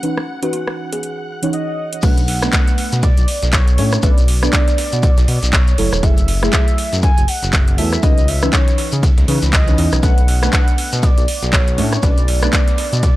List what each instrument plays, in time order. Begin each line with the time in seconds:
Already playing: string machine F#5 F#6
0.03 synth stab E3 C#4 D#4 B4, closed hi-hat
0.17 cross-stick
0.42 synth stab E3 C#4 D#4 B4, kalimba F#4, closed hi-hat
0.53 kalimba F#4, closed hi-hat
0.67 cross-stick
0.93 kalimba G#4, closed hi-hat
1.03 closed hi-hat
1.42 synth stab E3 C#4 D#4 C#5, closed hi-hat
1.53 soft synth lead D#5, closed hi-hat
1.93 closed hi-hat
2.02 analog synth bass B1, synth stab A3 C#4 D4 B4, soft synth lead F#5, kick, closed hi-hat, crash, ride, shekere
2.17 analog synth bass B1, closed hi-hat, shekere
2.28 open hi-hat, ride
2.42 synth stab A3 B3 D4 B4, cross-stick, snare, closed hi-hat, shekere
2.53 soft synth lead F#5, kick, snare, clap, closed hi-hat, ride, shekere
2.68 closed hi-hat, shekere
2.78 open hi-hat, ride
2.92 analog synth bass B2, snare, closed hi-hat, shekere
3.03 soft synth lead D5, kick, closed hi-hat, ride, shekere
3.17 analog synth bass B1, closed hi-hat, shekere
3.28 open hi-hat
3.42 analog synth bass B1, snare, closed hi-hat, shekere
3.53 soft synth lead C#5, kick, snare, clap, closed hi-hat, ride, shekere
3.68 closed hi-hat, ride, shekere
3.78 analog synth bass A2, synth stab A3 C#4 D4 C#5, open hi-hat, ride
3.92 cross-stick, closed hi-hat, shekere
4.02 analog synth bass B1, synth stab A3 C#4 D4 B4, soft synth lead D5, kick, closed hi-hat, ride, shekere
4.18 analog synth bass B1, closed hi-hat, shekere
4.28 open hi-hat, ride
4.42 synth stab A3 B3 D4 B4, soft synth lead D5, cross-stick, shekere
4.53 kick, snare, clap, closed hi-hat, ride, shekere
4.68 snare, closed hi-hat, shekere
4.78 snare, open hi-hat, ride
4.93 analog synth bass B2, closed hi-hat, shekere
5.03 kick, closed hi-hat, ride, shekere
5.17 analog synth bass B1, snare, closed hi-hat, shekere
5.28 analog synth bass B2, open hi-hat, ride
5.43 analog synth bass B1, snare, closed hi-hat, shekere
5.53 soft synth lead C#5, kick, snare, clap, closed hi-hat, ride, shekere
5.68 closed hi-hat, shekere
5.78 analog synth bass F#1, synth stab F#3 A3 E4 A4, open hi-hat, ride
5.93 analog synth bass E1, cross-stick, closed hi-hat, shekere
6.03 analog synth bass F#1, synth stab F#3 A3 E4 G#4, soft synth lead E5, kick, closed hi-hat, ride, shekere
6.17 analog synth bass F#1, closed hi-hat, shekere
6.28 open hi-hat, ride
6.42 synth stab F#3 A3 E4 G#4, cross-stick, snare, closed hi-hat, shekere
6.53 soft synth lead E5, kick, snare, clap, closed hi-hat, ride, shekere
6.68 closed hi-hat, shekere
6.78 open hi-hat, ride
6.93 analog synth bass F#2, snare, closed hi-hat, shekere
7.02 soft synth lead G#5, kick, closed hi-hat, ride, shekere
7.17 analog synth bass F#1, closed hi-hat, shekere
7.28 soft synth lead F#5, open hi-hat
7.43 analog synth bass F#1, snare, closed hi-hat, shekere
7.53 kick, snare, clap, closed hi-hat, ride, shekere
7.68 closed hi-hat, ride, shekere
7.78 analog synth bass E2, synth stab F#3 A3 E4 A4, soft synth lead E5, open hi-hat, ride
7.93 cross-stick, shekere
8.03 analog synth bass C#2, synth stab E3 C#4 D#4 B4, soft synth lead D#5, kick, closed hi-hat, ride, shekere
8.18 analog synth bass C#2, closed hi-hat, shekere
8.28 soft synth lead E5, open hi-hat, ride
8.42 synth stab E3 C#4 D#4 B4, cross-stick, closed hi-hat, shekere
8.53 soft synth lead C#5, kick, snare, clap, closed hi-hat, ride, shekere
8.68 snare, closed hi-hat, shekere
8.78 snare, open hi-hat, ride
8.92 analog synth bass C#3, closed hi-hat, shekere
9.03 kick, closed hi-hat, ride, shekere
9.17 analog synth bass C#2, snare, closed hi-hat, shekere
9.28 analog synth bass C#3, synth stab E3 C#4 D#4 B4, open hi-hat, ride
9.42 analog synth bass C#2, snare, closed hi-hat, shekere
9.53 soft synth lead D#5, kick, snare, clap, closed hi-hat, ride, shekere
9.67 synth stab E3 C#4 D#4 B4, closed hi-hat, shekere
9.78 analog synth bass E2, synth stab E3 C#4 D#4 D#5, open hi-hat, ride
9.92 analog synth bass B1, cross-stick, closed hi-hat, shekere
10.03 analog synth bass B1, synth stab A3 C#4 D4 B4, soft synth lead F#5, kick, closed hi-hat, ride, shekere
10.18 analog synth bass B1, closed hi-hat, shekere
10.28 open hi-hat, ride
10.42 synth stab A3 B3 D4 B4, cross-stick, snare, closed hi-hat, shekere
10.52 soft synth lead F#5, kick, snare, clap, closed hi-hat, ride, shekere
10.68 closed hi-hat, shekere
10.78 open hi-hat, ride
10.93 analog synth bass B2, snare, closed hi-hat, shekere
11.03 soft synth lead D5, kick, closed hi-hat, ride, shekere
11.18 analog synth bass B1, closed hi-hat, shekere
11.28 open hi-hat
11.43 analog synth bass B1, snare, closed hi-hat, shekere
11.53 soft synth lead C#5, kick, snare, clap, closed hi-hat, ride, shekere
11.67 closed hi-hat, ride, shekere
11.78 analog synth bass A2, synth stab A3 C#4 D4 C#5, open hi-hat, ride
11.93 cross-stick, closed hi-hat, shekere
12.03 analog synth bass B1, synth stab A3 C#4 D4 B4, soft synth lead D5, kick, closed hi-hat, ride, shekere
12.17 analog synth bass B1, closed hi-hat, shekere
12.28 open hi-hat, ride
12.42 synth stab A3 B3 D4 B4, soft synth lead D5, cross-stick, closed hi-hat, shekere
12.53 kick, snare, clap, closed hi-hat, ride, shekere
12.68 snare, closed hi-hat, shekere
12.78 snare, open hi-hat, ride
12.93 analog synth bass B2, closed hi-hat, shekere
13.03 kick, closed hi-hat, ride, shekere